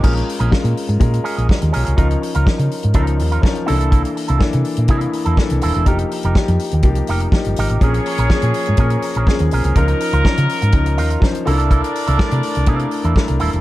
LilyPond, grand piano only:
\new Staff \with { instrumentName = "Grand piano" } { \time 4/4 \key c \phrygian \tempo 4 = 123 << { r2. <g' ees''>8 <f' des''>8~ | <f' des''>8 r2. r8 | r1 | r1 |
r1 | r1 | r1 | } \\ { <aes des' f' bes'>8 r8 <aes des' f' bes'>8 r8 <aes des' f' bes'>8 r4. | <f des' ees' bes'>8 r8 <f des' ees' bes'>8 r8 <f des' ees' bes'>8 r8 <f des' ees' bes'>8 <e bes d' a'>8~ | <e bes d' a'>8 r8 <e bes d' a'>8 r8 <e bes d' e'>8 r8 <e bes d' a'>8 r8 | <f bes ees' g'>8 r8 <f bes ees' g'>8 r8 <f bes ees' g'>8 r8 <f bes ees' g'>8 r8 |
<f bes des' aes'>8 r8 <f bes des' aes'>8 r8 <f bes des' aes'>8 r8 <f bes des' aes'>8 r8 | <f des' ees' bes'>8 r8 <f des' ees' bes'>8 r8 <f des' ees' bes'>8 r8 <f des' ees' c''>8 <d' e' a' bes'>8~ | <d' e' a' bes'>8 r8 <a d' e' bes'>8 r8 <a d' e' bes'>8 r8 <a d' e' bes'>8 r8 | } >> }